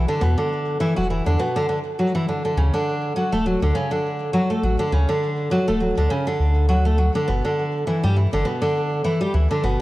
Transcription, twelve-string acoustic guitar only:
0.08 0.20 D3 medium
0.21 0.36 B2 medium
0.38 0.79 D3 medium
0.80 0.95 E3 loud
0.96 1.08 F#3 medium
1.10 1.26 E3 medium
1.26 1.38 D3 medium
1.39 1.54 B2 loud
1.56 1.68 D3 loud
1.69 1.78 D3 medium
1.99 2.14 F#3 medium
2.15 2.27 E3 medium
2.29 2.43 D3 medium
2.45 2.56 D3 medium
2.57 2.72 C#3 medium
2.74 3.15 D3 medium
3.16 3.31 F#3 medium
3.32 3.44 A3 loud
3.46 3.61 F#3 medium
3.62 3.74 D3 medium
3.75 3.90 C#3 loud
3.91 4.32 D3 medium
4.33 4.48 F#3 medium
4.50 4.62 A3 medium
4.63 4.78 F#3 medium
4.79 4.91 D3 loud
4.92 5.07 C#3 medium
5.09 5.50 D3 loud
5.51 5.66 F#3 loud
5.68 5.79 A3 loud
5.80 5.96 F#3 medium
5.97 6.09 D3 medium
6.10 6.25 C#3 loud
6.27 6.68 D3 loud
6.69 6.84 F#3 loud
6.85 6.97 A3 medium
6.98 7.13 F#3 medium
7.15 7.27 D3 loud
7.28 7.43 B2 medium
7.45 7.86 D3 medium
7.87 8.02 E3 medium
8.03 8.15 G3 loud
8.16 8.32 E3 medium
8.33 8.44 D3 loud
8.45 8.60 B2 loud
8.62 9.03 D3 loud
9.04 9.19 E3 loud
9.21 9.32 G3 medium
9.34 9.49 E3 medium
9.51 9.62 D3 loud
9.64 9.78 B2 medium

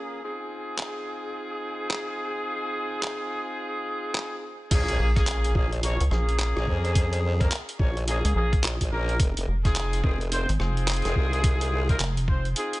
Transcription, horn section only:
0.00 0.20 A#3 medium
0.00 0.20 C#4 medium
0.00 0.20 F4 medium
0.00 0.20 G#4 medium
0.23 4.54 C4 medium
0.23 4.54 D#4 medium
0.23 4.54 F4 medium
0.23 4.54 G#4 medium
4.71 5.09 A#3 loud
4.71 5.09 C#4 loud
4.71 5.09 F4 loud
4.71 5.09 G#4 loud
5.16 5.53 A#3 loud
5.16 5.52 C#4 medium
5.16 5.52 F4 medium
5.16 5.52 G#4 loud
5.55 5.73 A#3 medium
5.55 5.73 C#4 medium
5.55 5.73 F4 medium
5.55 5.73 G#4 medium
5.83 6.01 A#3 medium
5.83 6.01 C#4 medium
5.83 6.01 F4 medium
5.83 6.01 C#5 loud
6.11 7.36 A#3 medium
6.11 7.36 C#4 medium
6.11 7.36 F4 medium
6.11 7.36 G#4 loud
7.41 7.52 A#3 medium
7.41 7.52 C#4 medium
7.41 7.52 F4 medium
7.41 7.52 A#4 loud
7.79 7.97 A#3 medium
7.79 7.97 C#4 medium
7.79 7.97 F4 medium
7.79 7.97 C#5 medium
8.07 8.32 A#3 medium
8.07 8.32 C#4 medium
8.07 8.32 F4 medium
8.07 8.32 G#4 loud
8.35 8.60 A#3 medium
8.35 8.60 C#4 medium
8.35 8.60 F4 medium
8.35 8.60 G#4 loud
8.92 9.16 A#3 loud
8.92 9.16 C#4 medium
8.92 9.16 F4 medium
8.92 9.16 A#4 loud
9.65 10.01 C4 loud
9.65 10.01 D#4 loud
9.65 10.01 F4 loud
9.65 10.01 G#4 loud
10.04 10.22 C4 medium
10.04 10.22 D#4 medium
10.04 10.22 F4 medium
10.04 10.22 G#4 loud
10.32 10.50 C4 medium
10.32 10.50 D#4 medium
10.32 10.50 F4 medium
10.32 10.50 C5 loud
10.60 11.85 C4 loud
10.60 11.85 D#4 medium
10.60 11.85 F4 medium
10.60 11.85 G#4 loud
11.89 12.01 C4 medium
11.89 12.01 D#4 medium
11.89 12.01 F4 medium
11.89 12.01 A#4 loud
12.28 12.46 C4 medium
12.28 12.46 D#4 medium
12.28 12.46 F4 medium
12.28 12.46 C5 medium
12.56 12.80 C4 medium
12.56 12.80 D#4 medium
12.56 12.80 F4 medium
12.56 12.80 G#4 medium

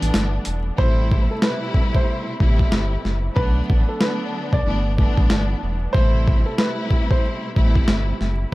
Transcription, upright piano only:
0.00 0.29 D5 medium
0.78 1.27 C5 loud
1.31 1.42 A4 medium
1.43 1.92 B4 medium
1.96 2.88 C5 medium
3.36 3.85 B4 loud
3.89 4.00 A4 medium
4.00 4.50 B4 medium
4.53 5.46 D5 medium
5.93 6.43 C5 loud
6.46 6.57 A4 medium
6.58 7.07 B4 medium
7.11 8.04 C5 medium

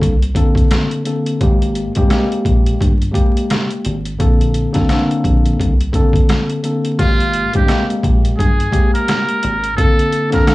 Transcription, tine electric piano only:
0.00 0.13 D3 loud
0.00 0.14 A#3 medium
0.00 0.14 C4 medium
0.00 0.14 A4 loud
0.34 1.00 D3 loud
0.34 1.01 A#3 medium
0.34 1.01 C4 medium
0.34 1.02 A4 loud
1.04 1.38 D3 medium
1.04 1.38 A#3 medium
1.04 1.39 C4 medium
1.04 1.39 A4 medium
1.40 1.91 C3 loud
1.40 1.91 G#3 medium
1.40 1.92 A#3 medium
1.40 1.92 G4 loud
1.96 2.07 C3 loud
1.96 2.08 G#3 medium
1.96 2.09 A#3 medium
1.96 2.09 G4 loud
2.08 2.91 C3 medium
2.08 2.92 G#3 medium
2.08 2.92 A#3 medium
2.08 2.92 G4 loud
3.12 3.95 C3 medium
3.12 3.96 G#3 medium
3.12 3.96 A#3 medium
3.12 3.97 G4 loud
4.19 4.70 D3 medium
4.19 4.70 A#3 medium
4.19 4.70 C4 medium
4.19 4.71 A4 loud
4.72 4.88 D3 loud
4.72 4.89 A#3 medium
4.72 4.90 C4 medium
4.72 4.90 A4 loud
4.89 5.71 D3 loud
4.89 5.72 A#3 medium
4.89 5.72 C4 medium
4.89 5.73 A4 loud
5.93 6.59 D3 loud
5.93 6.59 A#3 medium
5.93 6.60 C4 medium
5.93 6.60 A4 loud
6.63 6.96 D3 medium
6.63 6.96 A#3 medium
6.63 6.97 C4 medium
6.63 6.97 A4 medium
6.98 7.49 C3 loud
6.98 7.49 G#3 medium
6.98 7.50 A#3 medium
6.98 7.50 G4 loud
7.54 7.65 C3 loud
7.54 7.66 G#3 medium
7.54 7.67 A#3 medium
7.54 7.68 G4 loud
7.66 8.49 C3 medium
7.66 8.50 G#3 medium
7.66 8.50 A#3 medium
7.66 8.51 G4 medium
8.70 9.54 C3 medium
8.70 9.54 G#3 medium
8.70 9.54 A#3 medium
8.70 9.55 G4 loud
9.77 10.28 D3 medium
9.77 10.28 A#3 medium
9.77 10.29 C4 medium
9.77 10.29 A4 loud
10.30 10.46 D3 loud
10.30 10.47 A#3 medium
10.30 10.48 C4 medium
10.30 10.49 A4 loud
10.48 10.55 D3 loud
10.48 10.55 A#3 medium
10.48 10.55 C4 medium
10.48 10.55 A4 loud

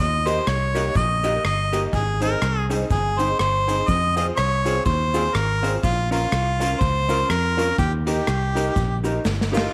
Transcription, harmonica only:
0.00 0.29 D#5 loud
0.27 0.49 C5 medium
0.47 0.96 C#5 medium
0.97 1.41 D#5 medium
1.45 1.81 D#5 medium
1.94 2.20 G#4 medium
2.23 2.68 A#4 medium
2.91 3.21 G#4 medium
3.19 3.39 C5 loud
3.40 3.89 C5 loud
3.88 4.16 D#5 loud
4.17 4.26 D#5 medium
4.36 4.82 C#5 loud
4.85 5.36 C5 loud
5.34 5.73 A#4 loud
5.84 6.10 F4 loud
6.12 6.82 F4 medium
6.81 7.31 C5 loud
7.29 7.78 A#4 medium
7.79 7.91 G4 medium
8.07 9.01 G4 medium
9.54 9.73 F4 medium

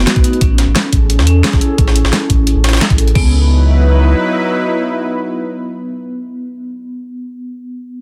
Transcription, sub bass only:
0.16 0.23 B1 medium
0.41 0.66 A1 loud
0.68 0.75 A1 medium
0.93 1.20 A1 medium
1.19 1.43 E2 medium
1.53 1.60 A1 medium
1.78 2.03 A1 loud
2.05 2.12 A1 medium
2.30 2.55 A1 medium
2.56 2.80 A1 loud
2.90 3.14 A1 loud
3.16 4.14 C#2 medium

